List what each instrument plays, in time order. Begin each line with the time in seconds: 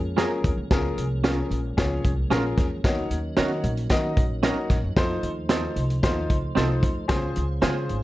Already playing: upright bass F2, tonewheel organ F3 G#3 A#3 C#4
0.17 upright piano C#4 F4 G#4 A#4, clean electric guitar C#4 G#4 A#4, snare, closed hi-hat
0.44 upright bass D#2, kick, closed hi-hat
0.57 upright bass D2
0.71 upright bass C#2, tonewheel organ F3 G#3 A#3, upright piano C#4 F4 G#4 A#4, kick, snare, closed hi-hat
0.97 upright bass C2, closed hi-hat
1.24 clean electric guitar C#4 F4 A#4, upright piano C#4 F4 G#4 A#4, snare, closed hi-hat
1.50 upright bass A#1, closed hi-hat
1.77 upright bass C#2, upright piano C#4 F4 G#4 C#5, kick, snare, closed hi-hat
2.04 upright bass C2, kick, closed hi-hat
2.30 upright bass A#1, clean electric guitar C#4 F4 A#4, upright piano C#4 F4 G#4 A#4, snare, closed hi-hat
2.58 upright bass E2, kick, snare, closed hi-hat
2.84 upright bass D#2, tonewheel organ F#3 D#4, upright piano D#4 F#4 A#4 C#5, kick, snare, closed hi-hat
3.11 upright bass D#2, closed hi-hat
3.37 upright bass D#3, clean electric guitar C#4 F#4 A#4, upright piano D#4 F#4 A#4 C#5, snare, closed hi-hat
3.64 upright bass A#1, closed hi-hat
3.77 closed hi-hat
3.90 upright bass D#3, upright piano D#4 F#4 A#4 D#5, kick, snare, closed hi-hat
4.17 upright bass A#1, kick, closed hi-hat
4.43 clean electric guitar C#4 F#4 A#4, upright piano D#4 F#4 A#4 C#5, snare, closed hi-hat
4.70 upright bass A#1, kick, snare, closed hi-hat
4.84 upright bass F#2
4.97 upright bass F2, tonewheel organ F3 A3 C5, upright piano D#4 F4 A4 C5, kick, snare, closed hi-hat
5.23 upright bass D#2, closed hi-hat
5.49 clean electric guitar C4 D#4 A4, upright piano D#4 F4 A4 C5, snare, closed hi-hat
5.76 upright bass C2, closed hi-hat
5.90 closed hi-hat
6.03 upright bass D#2, upright piano D#4 F4 A4 C5, kick, snare, closed hi-hat
6.30 upright bass C#2, kick, closed hi-hat
6.55 upright bass C2, clean electric guitar C4 D#4 A4, upright piano D#4 F4 A4 C5, snare, closed hi-hat
6.83 upright bass D2, kick, closed hi-hat
7.08 upright bass C#2, tonewheel organ G#3 C#4 F4, upright piano C#4 F4 G#4 C5, kick, snare, closed hi-hat
7.36 upright bass C#2, closed hi-hat
7.62 upright bass C#3, clean electric guitar C4 F4 G#4, upright piano C#4 F4 G#4 C5, snare, closed hi-hat
7.89 upright bass G#1, closed hi-hat